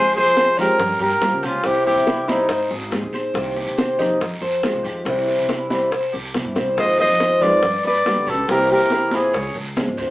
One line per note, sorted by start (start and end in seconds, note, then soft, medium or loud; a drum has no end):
0.00 0.24 F2 loud
0.00 0.57 C3 medium
0.00 0.57 F3 medium
0.00 0.58 G#3 medium
0.00 0.58 C4 medium
0.00 0.58 F4 medium
0.00 0.14 G#4 medium
0.00 0.14 C5 loud
0.15 0.36 G#4 medium
0.15 0.56 G#4 medium
0.15 0.55 C5 loud
0.15 high bongo soft
0.15 high conga soft
0.25 0.76 F3 medium
0.36 0.57 C5 medium
0.36 high bongo medium
0.36 high conga medium
0.36 short guiro medium
0.57 0.80 F3 soft
0.57 0.79 G#3 medium
0.57 0.79 C4 medium
0.57 0.99 C#4 medium
0.57 0.79 F4 medium
0.57 0.99 G4 medium
0.57 0.98 A#4 medium
0.57 high bongo soft
0.57 low conga medium
0.57 short guiro medium
0.79 0.99 G2 medium
0.79 muted steel-string acoustic guitar stroke medium
0.79 high bongo medium
0.79 high conga soft
0.79 low conga medium
0.79 long guiro medium
0.99 1.20 G2 medium
0.99 1.41 G4 medium
0.99 1.42 A#4 medium
0.99 1.46 A#4 medium
0.99 high bongo soft
0.99 high conga soft
1.21 1.64 F3 soft
1.21 1.31 G3 medium
1.21 1.64 A#3 soft
1.21 1.65 F4 soft
1.21 1.65 G4 medium
1.21 high bongo medium
1.21 low bongo medium
1.21 high conga medium
1.21 short guiro medium
1.32 1.44 C#3 medium
1.43 1.63 C#2 medium
1.43 1.66 C#4 medium
1.43 1.67 F4 medium
1.43 1.63 G4 medium
1.43 high conga soft
1.43 short guiro medium
1.64 1.95 C2 loud
1.64 2.28 C3 medium
1.64 2.28 E3 medium
1.64 2.28 G3 medium
1.64 2.06 C4 medium
1.64 2.28 C4 medium
1.64 2.26 E4 medium
1.64 1.86 E4 medium
1.64 1.86 G4 loud
1.64 high bongo medium
1.64 high conga soft
1.64 long guiro medium
1.86 2.28 E4 medium
1.86 2.31 G4 medium
1.86 high bongo soft
1.86 high conga soft
1.95 2.47 C3 medium
2.07 2.48 E4 medium
2.07 high bongo medium
2.07 high conga medium
2.07 short guiro medium
2.28 2.49 E3 medium
2.28 2.49 G3 medium
2.28 2.49 C4 medium
2.28 2.71 C4 medium
2.28 2.72 D#4 medium
2.28 2.49 E4 medium
2.28 high bongo soft
2.28 high conga medium
2.28 short guiro medium
2.49 2.70 G#1 medium
2.49 2.70 C5 medium
2.49 muted steel-string acoustic guitar stroke medium
2.49 high bongo medium
2.49 high conga soft
2.49 long guiro medium
2.71 2.91 G#1 medium
2.71 3.12 G#4 medium
2.71 high bongo soft
2.71 high conga soft
2.91 3.02 G#2 medium
2.91 3.34 G#3 soft
2.91 3.35 C4 medium
2.91 3.35 D#4 soft
2.91 3.35 G#4 medium
2.91 high bongo medium
2.91 low bongo medium
2.91 high conga medium
2.91 short guiro medium
3.02 3.14 D#2 medium
3.13 3.34 A#1 loud
3.13 3.55 C5 medium
3.13 high conga medium
3.13 short guiro medium
3.34 3.65 C2 loud
3.34 3.99 C3 medium
3.34 3.99 D#3 medium
3.34 3.99 A#3 medium
3.34 3.99 C4 medium
3.34 3.98 G4 medium
3.34 high bongo medium
3.34 high conga soft
3.34 long guiro medium
3.56 3.77 G4 medium
3.56 high bongo soft
3.56 high conga soft
3.67 4.18 C3 medium
3.78 3.99 C5 medium
3.78 high bongo medium
3.78 high conga medium
3.78 short guiro medium
3.99 4.20 D#3 medium
3.99 4.20 A#3 medium
3.99 4.20 C4 medium
3.99 4.41 D#4 medium
3.99 4.20 G4 medium
3.99 high bongo soft
3.99 low conga medium
3.99 short guiro medium
4.21 4.41 F2 loud
4.21 muted steel-string acoustic guitar stroke medium
4.21 high bongo medium
4.21 high conga soft
4.21 low conga medium
4.21 long guiro medium
4.41 4.62 F2 medium
4.41 4.83 C5 medium
4.41 high bongo soft
4.41 high conga soft
4.63 5.05 D#3 soft
4.63 4.73 F3 medium
4.63 5.06 G#3 medium
4.63 5.06 C4 medium
4.63 5.06 F4 medium
4.63 high bongo medium
4.63 low bongo medium
4.63 high conga medium
4.63 short guiro medium
4.73 4.86 C2 medium
4.84 5.04 F2 medium
4.84 5.05 G4 medium
4.84 high conga soft
4.84 short guiro medium
5.05 5.36 C2 loud
5.05 5.70 C3 medium
5.05 5.70 E3 medium
5.05 5.70 G3 medium
5.05 5.48 C4 medium
5.05 5.69 C4 medium
5.05 5.69 E4 medium
5.05 high bongo medium
5.05 high conga soft
5.05 long guiro medium
5.28 high bongo soft
5.28 high conga soft
5.39 6.10 C3 medium
5.49 5.90 E4 medium
5.49 high bongo medium
5.49 high conga medium
5.49 short guiro medium
5.70 5.91 E3 medium
5.70 5.91 G3 medium
5.70 5.91 C4 medium
5.70 5.91 E4 medium
5.70 high bongo soft
5.70 high conga medium
5.70 short guiro medium
5.91 6.12 C5 medium
5.91 muted steel-string acoustic guitar stroke medium
5.91 high bongo medium
5.91 high conga soft
5.91 long guiro medium
6.13 6.34 C2 medium
6.13 6.55 G4 medium
6.13 high bongo soft
6.13 high conga soft
6.34 6.44 C3 medium
6.34 6.77 E3 soft
6.34 6.77 G3 soft
6.34 6.77 C4 soft
6.34 6.78 E4 medium
6.34 high bongo medium
6.34 low bongo medium
6.34 high conga medium
6.34 short guiro medium
6.45 6.57 G2 medium
6.55 6.76 C2 medium
6.55 6.98 C5 medium
6.55 high bongo medium
6.55 high conga medium
6.55 short guiro medium
6.77 7.08 F2 loud
6.77 7.41 C3 medium
6.77 7.41 D#3 medium
6.77 7.41 G#3 medium
6.77 7.41 C4 medium
6.77 7.41 F4 medium
6.77 6.98 C5 medium
6.77 6.98 D#5 loud
6.77 high bongo medium
6.77 high conga soft
6.77 long guiro medium
6.98 7.19 F4 medium
6.98 7.43 C5 medium
6.98 7.44 D#5 loud
6.98 high bongo soft
6.98 high conga soft
7.10 7.61 F3 medium
7.20 7.41 C5 medium
7.20 high bongo medium
7.20 high conga medium
7.20 short guiro medium
7.41 7.63 D#3 medium
7.41 7.63 G#3 medium
7.41 7.62 C4 medium
7.41 7.83 D4 medium
7.41 7.62 F4 medium
7.41 7.85 B4 medium
7.41 7.85 D5 medium
7.41 high bongo soft
7.41 low conga medium
7.41 short guiro medium
7.63 7.83 G2 medium
7.63 muted steel-string acoustic guitar stroke medium
7.63 high bongo medium
7.63 high conga soft
7.63 low conga medium
7.63 long guiro medium
7.84 8.05 G2 medium
7.84 8.26 B4 medium
7.84 8.29 B4 medium
7.84 8.31 D5 loud
7.84 high bongo soft
7.84 high conga soft
8.05 8.48 D3 medium
8.05 8.15 G3 medium
8.05 8.48 G3 medium
8.05 8.49 B3 soft
8.05 8.49 G4 soft
8.05 high bongo medium
8.05 low bongo medium
8.05 high conga medium
8.05 short guiro medium
8.16 8.28 D2 medium
8.27 8.47 C#2 loud
8.27 8.50 F#4 medium
8.27 8.48 G4 medium
8.27 8.50 A4 medium
8.27 high conga soft
8.27 short guiro medium
8.48 8.79 C2 loud
8.48 9.12 C3 medium
8.48 9.12 E3 medium
8.48 9.13 A#3 medium
8.48 8.90 C4 medium
8.48 9.13 C4 medium
8.48 9.12 E4 medium
8.48 8.70 G4 medium
8.48 8.70 A#4 medium
8.48 high bongo medium
8.48 high conga soft
8.48 long guiro medium
8.70 9.14 G4 medium
8.70 9.17 A#4 loud
8.70 high bongo soft
8.70 high conga soft
8.80 9.31 C3 medium
8.90 9.33 E4 medium
8.90 high bongo medium
8.90 high conga medium
8.90 short guiro medium
9.11 9.34 E3 medium
9.11 9.34 A#3 medium
9.11 9.34 C4 medium
9.11 9.34 E4 medium
9.11 9.56 F4 medium
9.11 high bongo soft
9.11 high conga loud
9.11 short guiro medium
9.16 9.57 G#4 medium
9.33 9.54 C#2 loud
9.33 9.55 C#5 medium
9.33 muted steel-string acoustic guitar stroke medium
9.33 high bongo medium
9.33 high conga soft
9.33 long guiro medium
9.55 9.76 C#2 medium
9.55 9.97 G#4 medium
9.55 high bongo soft
9.55 high conga soft
9.76 9.87 C#3 medium
9.76 10.10 F3 soft
9.76 10.10 G#3 soft
9.76 10.10 C#4 soft
9.76 10.10 F4 medium
9.76 high bongo medium
9.76 low bongo medium
9.76 high conga medium
9.76 short guiro medium
9.88 10.00 G#1 medium
9.97 10.10 E2 medium
9.97 10.10 C5 medium
9.97 short guiro medium